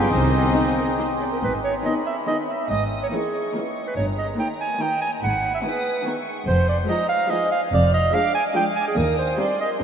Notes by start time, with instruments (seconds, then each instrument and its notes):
Already playing: french horn section F3 B3, clarinet B3, violin section B4, flute F5
0.10 double bass section C2, tuba C2, cello section D#3, french horn section D#3 C4, clarinet C4, oboe D#4, violin section C5 D#5, flute D#5, glockenspiel D#6
0.53 viola section C4 D#4, violin section G4
0.76 violin section A#4
0.97 viola section C4 D#4, violin section C5
1.20 violin section D5
1.32 clarinet A#4
1.43 double bass section G#1, cello section G#2, clarinet B4
1.64 clarinet C#5
1.84 viola section D#3 B3, violin section D#4 G#4 B5, clarinet D#5
2.06 clarinet E5
2.27 viola section D#3 B3, violin section D#4 G#4, clarinet D#5
2.48 clarinet E5
2.70 double bass section G#1, cello section G#2, clarinet D#5, violin section D#6
3.03 clarinet C#5
3.12 viola section E3 A#3, violin section C#4 A#4 C#6, clarinet G#4
3.55 viola section E3 A#3, violin section C#4 A#4
3.87 clarinet B4
3.97 double bass section G1, cello section G2, clarinet C#5, violin section A#5
4.18 clarinet D#5
4.38 viola section D#3 A#3, violin section D#4 A#4 A#5, clarinet G5
4.60 clarinet G#5
4.80 viola section D#3 A#3, violin section D#4 A#4, clarinet G5
5.02 clarinet G#5
5.21 double bass section G#1, cello section G#2, clarinet F#5, violin section B5
5.54 clarinet E5
5.63 viola section D#3 B3, violin section D#4 G#4 D#6, clarinet B4
6.05 viola section D#3 B3, violin section D#4 G#4 C#6
6.46 double bass section F1, cello section F2, clarinet C5, violin section C6
6.69 clarinet D5
6.88 viola section F3 G#3, violin section D#4 G#4 A#5, clarinet D#5
7.09 clarinet F5
7.30 viola section F3 G#3, violin section D#4 G#4 G#5, clarinet D#5
7.52 clarinet F5
7.72 double bass section F1, cello section F2, clarinet D5, violin section F6
7.94 clarinet D#5
8.13 viola section F3 G#3, violin section D4 G#4 D6, clarinet F5
8.35 clarinet G#5
8.55 viola section F3 G#3, violin section D4 G#4 D6, clarinet G5
8.76 clarinet G#5
8.87 clarinet G#4
8.97 cello section D#2, double bass section D#2, clarinet A#4, violin section D#6
9.18 clarinet C5
9.39 viola section G3 C4, violin section D#4 G4 C6, clarinet D5
9.61 clarinet D#5